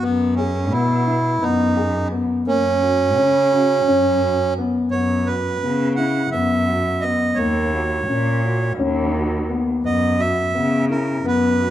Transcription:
0.02 0.74 F#2 medium
0.02 0.35 B3 medium
0.02 0.33 B3 medium
0.36 0.73 C#4 medium
0.36 0.68 G#4 medium
0.72 1.33 B2 medium
0.72 1.02 B3 medium
0.72 1.44 E4 medium
1.07 1.37 E4 medium
1.42 2.34 F#2 medium
1.42 1.72 B3 medium
1.42 2.08 D#4 medium
1.77 2.07 G#4 medium
2.12 2.42 B3 medium
2.47 3.19 F#2 medium
2.47 2.77 A#3 medium
2.47 4.54 C#4 loud
2.82 3.12 F#4 medium
3.17 3.78 C#3 medium
3.17 3.47 C#4 medium
3.52 3.82 F#4 medium
3.87 4.79 F#2 medium
3.87 4.18 C#4 medium
4.22 4.52 F#4 medium
4.58 4.88 B3 medium
4.91 5.53 F#2 medium
4.91 5.23 B3 medium
4.91 5.28 C#5 medium
5.26 5.58 F#4 medium
5.26 5.93 B4 medium
5.62 6.24 C#3 medium
5.62 5.93 B3 medium
5.96 6.28 E4 medium
5.96 6.29 F#5 medium
6.31 7.24 F#2 medium
6.31 6.63 B3 medium
6.31 7.04 E5 medium
6.68 6.98 F#4 medium
7.01 7.33 B3 medium
7.01 7.38 D#5 medium
7.35 7.99 D#2 medium
7.35 7.68 A#3 medium
7.35 8.73 C#5 medium
7.73 8.03 F#4 medium
8.08 8.69 A#2 medium
8.08 8.38 C#4 medium
8.44 8.74 F#4 medium
8.78 9.70 D#2 medium
8.78 9.08 C#4 medium
9.15 9.44 F#4 medium
9.49 9.79 B3 medium
9.84 10.45 F#2 medium
9.84 10.14 B3 medium
9.84 10.21 D#5 medium
10.19 10.49 F#4 medium
10.19 10.85 E5 loud
10.55 11.15 C#3 medium
10.55 10.84 B3 medium
10.90 11.19 E4 medium
10.90 11.26 A#4 medium
11.25 11.70 F#2 medium
11.25 11.54 B3 medium
11.25 11.70 B4 medium
11.60 11.70 F#4 medium

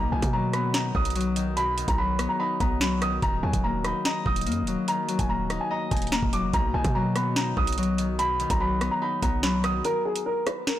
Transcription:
0.00 0.11 B1 loud
0.00 0.17 B2 medium
0.00 0.74 D#4 medium
0.00 0.87 D#5 medium
0.12 0.22 B1 loud
0.12 1.35 D#3 medium
0.12 0.29 G#5 medium
0.22 0.92 B2 loud
0.22 kick loud
0.22 closed hi-hat medium
0.33 1.14 F#3 medium
0.33 0.50 A#5 medium
0.53 0.94 B3 loud
0.53 0.70 B5 medium
0.53 cross-stick medium
0.53 closed hi-hat medium
0.74 2.39 D#4 medium
0.74 0.91 A#5 medium
0.74 snare loud
0.74 closed hi-hat medium
0.95 1.84 B1 loud
0.95 2.19 B3 medium
0.95 1.53 D#6 medium
0.95 kick medium
1.05 closed hi-hat medium
1.10 closed hi-hat medium
1.16 1.41 F#3 medium
1.16 closed hi-hat medium
1.21 closed hi-hat soft
1.36 1.62 D#3 medium
1.36 closed hi-hat medium
1.57 1.83 B2 medium
1.57 1.86 B5 loud
1.57 closed hi-hat medium
1.78 3.01 D#3 medium
1.78 closed hi-hat medium
1.88 2.28 B1 loud
1.88 1.97 A#5 medium
1.88 kick loud
1.88 closed hi-hat medium
1.98 2.80 F#3 medium
1.98 2.27 B5 medium
2.19 2.60 B3 loud
2.19 cross-stick medium
2.19 closed hi-hat medium
2.29 2.38 A#5 medium
2.40 3.84 D#4 medium
2.40 2.57 B5 medium
2.60 3.20 B1 loud
2.60 3.70 B3 medium
2.60 2.77 A#5 medium
2.60 kick loud
2.60 closed hi-hat medium
2.81 3.07 F#3 medium
2.81 2.98 B5 medium
2.81 snare loud
3.02 3.21 D#3 medium
3.02 3.19 D#6 medium
3.02 cross-stick medium
3.02 closed hi-hat medium
3.22 3.42 D#1 loud
3.22 4.87 D#3 medium
3.22 3.39 A#5 loud
3.22 kick loud
3.22 closed hi-hat medium
3.43 3.53 D#2 loud
3.43 4.66 F#3 medium
3.43 3.60 G#5 medium
3.53 3.93 D#1 loud
3.53 kick loud
3.53 closed hi-hat loud
3.64 4.46 A#3 medium
3.64 3.81 A#5 medium
3.84 4.25 D#4 medium
3.84 4.01 B5 medium
3.84 cross-stick medium
3.84 closed hi-hat medium
4.05 5.70 D#5 medium
4.05 4.22 A#5 medium
4.05 snare loud
4.05 closed hi-hat medium
4.26 4.48 D#1 loud
4.26 5.50 D#4 medium
4.26 4.84 D#6 medium
4.26 kick loud
4.36 closed hi-hat medium
4.41 closed hi-hat medium
4.46 4.64 F#2 loud
4.46 5.29 A#3 medium
4.46 closed hi-hat medium
4.52 closed hi-hat soft
4.62 4.77 D#1 loud
4.67 4.93 F#3 medium
4.67 closed hi-hat medium
4.88 6.58 D#3 medium
4.88 5.17 A#5 loud
4.88 closed hi-hat medium
5.09 6.32 F#3 medium
5.09 closed hi-hat medium
5.19 5.59 D#1 loud
5.19 5.28 G#5 medium
5.19 kick medium
5.19 closed hi-hat medium
5.29 6.12 A#3 medium
5.29 5.58 A#5 loud
5.50 5.91 D#4 medium
5.50 cross-stick medium
5.50 closed hi-hat medium
5.61 5.69 G#5 medium
5.71 7.49 D#5 medium
5.71 5.88 A#5 medium
5.91 6.21 D#1 loud
5.91 7.37 D#4 medium
5.91 6.08 G#5 medium
5.91 kick loud
5.91 closed hi-hat medium
5.97 closed hi-hat medium
6.02 closed hi-hat medium
6.07 closed hi-hat medium
6.12 6.60 A#3 loud
6.12 6.29 A#5 medium
6.12 snare loud
6.22 6.45 D#1 loud
6.22 kick loud
6.33 6.58 F#3 medium
6.33 6.50 D6 medium
6.33 closed hi-hat medium
6.43 6.53 F#1 loud
6.54 6.73 B1 loud
6.54 6.79 B2 medium
6.54 6.71 A#5 loud
6.54 kick loud
6.54 closed hi-hat medium
6.74 6.84 B1 loud
6.74 7.97 D#3 medium
6.74 6.91 G#5 loud
6.84 7.54 B2 loud
6.84 kick loud
6.84 closed hi-hat loud
6.95 7.77 F#3 medium
6.95 7.12 A#5 medium
7.16 7.56 B3 loud
7.16 7.33 B5 medium
7.16 cross-stick medium
7.16 closed hi-hat medium
7.36 9.01 D#4 medium
7.36 7.53 A#5 medium
7.36 snare loud
7.36 closed hi-hat medium
7.57 8.46 B1 loud
7.57 8.81 B3 medium
7.57 8.15 D#6 medium
7.57 kick loud
7.67 closed hi-hat medium
7.73 closed hi-hat medium
7.78 8.03 F#3 medium
7.78 closed hi-hat medium
7.83 closed hi-hat soft
7.98 8.24 D#3 medium
7.98 closed hi-hat medium
8.19 8.45 B2 loud
8.19 8.48 B5 loud
8.19 closed hi-hat medium
8.40 9.62 D#3 medium
8.40 closed hi-hat medium
8.50 8.90 B1 loud
8.50 8.59 A#5 medium
8.50 kick loud
8.50 closed hi-hat medium
8.60 9.42 F#3 medium
8.60 8.90 B5 medium
8.81 9.22 B3 loud
8.81 cross-stick medium
8.81 closed hi-hat medium
8.91 9.00 A#5 medium
9.02 10.79 D#4 medium
9.02 9.19 B5 medium
9.22 9.82 B1 loud
9.22 10.79 B3 medium
9.22 9.39 A#5 medium
9.22 kick loud
9.22 closed hi-hat medium
9.43 9.69 F#3 loud
9.43 9.60 B5 medium
9.43 snare loud
9.64 9.90 D#3 medium
9.64 9.81 D#6 medium
9.64 cross-stick medium
9.64 closed hi-hat medium
9.85 10.02 A#4 loud
9.85 closed hi-hat medium
10.05 10.22 G#4 medium
10.16 closed hi-hat medium
10.26 10.43 A#4 medium
10.47 10.64 B4 medium
10.47 cross-stick medium
10.47 closed hi-hat medium
10.67 10.79 A#4 medium
10.67 snare loud
10.67 closed hi-hat medium

